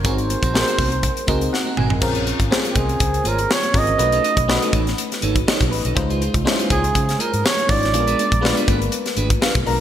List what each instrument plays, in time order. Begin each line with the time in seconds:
0.03 fingered electric bass G#1, clean electric guitar C4 F#4 A#4, fm electric piano C4 D#4 F#4 G#4 A#4, flugelhorn C5, kick, closed hi-hat, muted conga, low conga
0.18 muted clean electric guitar stroke, closed hi-hat
0.29 muted clean electric guitar stroke, closed hi-hat, high conga
0.43 fingered electric bass A#1, clean electric guitar C4 F#4 A#4, kick, closed hi-hat
0.53 fm electric piano C4 D#4 F#4 G#4 A#4, muted clean electric guitar stroke, snare, muted conga, high conga
0.61 fm electric piano C5
0.67 clean electric guitar C4 F#4 C5, closed hi-hat, muted conga
0.78 fingered electric bass C2, clean electric guitar C4 F#4 C5, kick, open hi-hat, high conga
0.92 muted clean electric guitar stroke, closed hi-hat
1.03 kick, closed hi-hat, muted conga
1.16 muted clean electric guitar stroke, closed hi-hat
1.27 fingered electric bass C#2, clean electric guitar C4 F#4 A#4, fm electric piano C4 D#4 F#4 G#4 A#4 D#5, kick, closed hi-hat, high conga
1.41 muted clean electric guitar stroke, closed hi-hat
1.53 fm electric piano F#5, muted clean electric guitar stroke, snare, muted conga
1.64 clean electric guitar C4 F#4 A#4, high conga
1.77 fingered electric bass G#1, clean electric guitar C4 F#4 A#4, fm electric piano G#5, mid tom
1.90 muted clean electric guitar stroke, floor tom, low conga
2.00 fingered electric bass A#1, fm electric piano C4 C#4 F4 G#4 A#4, muted clean electric guitar stroke, kick, crash, low conga
2.15 clean electric guitar F4 G#4 C#5, closed hi-hat, muted conga
2.26 clean electric guitar F4 G#4 C#5, closed hi-hat
2.40 fingered electric bass G#1, muted clean electric guitar stroke, kick, closed hi-hat
2.51 fm electric piano C4 C#4 F4 G#4 C5, snare, muted conga, high conga
2.64 clean electric guitar F4 G#4 C#5, closed hi-hat
2.70 flugelhorn G4
2.75 fingered electric bass C2, clean electric guitar F4 G#4 D#5, flugelhorn G#4, kick, closed hi-hat, high conga
2.89 muted clean electric guitar stroke, closed hi-hat
3.00 fingered electric bass C#2, kick, closed hi-hat
3.14 muted clean electric guitar stroke, closed hi-hat
3.24 fingered electric bass G#1, clean electric guitar F4 G#4 C#5, closed hi-hat, high conga
3.28 flugelhorn A#4
3.38 muted clean electric guitar stroke, closed hi-hat
3.50 flugelhorn C#5, muted clean electric guitar stroke, snare
3.63 muted clean electric guitar stroke, closed hi-hat, muted conga, high conga
3.74 fingered electric bass G#1, fm electric piano C4 C#4 F4 G#4 A#4, kick, open hi-hat
3.78 flugelhorn D#5
3.87 muted clean electric guitar stroke, closed hi-hat, low conga
3.98 fingered electric bass B1, fm electric piano A3 C#4 D#4 F#4 B4, muted clean electric guitar stroke, closed hi-hat, muted conga, low conga
4.12 clean electric guitar D#4 A4 C#5, closed hi-hat
4.24 clean electric guitar D#4 A4 D#5, closed hi-hat
4.37 fingered electric bass B1, muted clean electric guitar stroke, kick, closed hi-hat
4.48 fm electric piano A3 C#4 D#4 F#4 B4, muted clean electric guitar stroke, snare, muted conga, high conga
4.61 clean electric guitar D#4 A4 C#5, closed hi-hat, muted conga
4.73 fingered electric bass A1, clean electric guitar D#4 A4 C#5, kick, closed hi-hat, high conga
4.87 muted clean electric guitar stroke, snare, closed hi-hat
4.98 closed hi-hat, muted conga
5.12 muted clean electric guitar stroke, snare, closed hi-hat, muted conga
5.21 fingered electric bass G#1, clean electric guitar D#4 A4 C#5, closed hi-hat, high conga
5.36 muted clean electric guitar stroke, kick, closed hi-hat
5.47 clean electric guitar D#4 A4 C#5, fm electric piano D#5, snare
5.60 fingered electric bass B1, muted clean electric guitar stroke, kick, closed hi-hat, high conga
5.71 fingered electric bass A1, fm electric piano B4, muted clean electric guitar stroke, open hi-hat
5.85 fingered electric bass B1, clean electric guitar D#4 A4 D#5, closed hi-hat, low conga
5.95 fm electric piano G#3 C#4 D#4 F4 C5, kick, closed hi-hat, low conga
6.10 clean electric guitar F4 G#4 C5, closed hi-hat
6.21 clean electric guitar F4 G#4 C5, closed hi-hat
6.34 fingered electric bass C2, muted clean electric guitar stroke, kick, closed hi-hat
6.44 fm electric piano G#3 C#4 D#4 E4 C5, muted clean electric guitar stroke, snare, muted conga, high conga
6.51 fm electric piano F4
6.58 clean electric guitar F4 G#4 C5, closed hi-hat
6.70 fingered electric bass C#2, clean electric guitar F4 G#4 C#5, flugelhorn G#4, kick, closed hi-hat, high conga
6.84 muted clean electric guitar stroke, closed hi-hat
6.95 fingered electric bass C#3, kick, closed hi-hat, muted conga
7.08 muted clean electric guitar stroke, snare, closed hi-hat, muted conga
7.19 clean electric guitar F4 G#4 C5, flugelhorn A#4, closed hi-hat, high conga
7.33 fingered electric bass G#2, muted clean electric guitar stroke, closed hi-hat
7.44 flugelhorn C#5, muted clean electric guitar stroke, snare
7.57 muted clean electric guitar stroke, closed hi-hat, muted conga, high conga
7.68 fingered electric bass G#1, fm electric piano G#3 C#4 D#4 F4 C#5, flugelhorn D5, kick, open hi-hat
7.82 muted clean electric guitar stroke, snare, closed hi-hat, low conga
7.93 fingered electric bass A#1, fm electric piano G#3 B3 D4 F4 G#4, muted clean electric guitar stroke, closed hi-hat, muted conga, low conga
8.00 fm electric piano A#4
8.07 clean electric guitar D4 G#4 B4, closed hi-hat
8.19 clean electric guitar D4 G#4 D5, closed hi-hat, high conga
8.32 fingered electric bass A#1, kick, closed hi-hat
8.41 fm electric piano G#3 B3 D4 F4 B4, muted clean electric guitar stroke, snare, high conga
8.57 clean electric guitar D4 G#4 B4, closed hi-hat, muted conga
8.68 fingered electric bass G#1, clean electric guitar D4 G#4 B4, kick, closed hi-hat, high conga
8.82 muted clean electric guitar stroke, closed hi-hat
8.92 closed hi-hat
9.06 muted clean electric guitar stroke, snare, closed hi-hat
9.16 fingered electric bass G#1, clean electric guitar D4 G#4 B4, closed hi-hat, high conga
9.30 muted clean electric guitar stroke, kick, closed hi-hat
9.41 clean electric guitar D4 G#4 B4, fm electric piano F5, snare, muted conga
9.55 fingered electric bass B1, kick, closed hi-hat, high conga
9.66 fingered electric bass B1, fm electric piano G#3 B3 D4 F4 A#4 A#5, muted clean electric guitar stroke, open hi-hat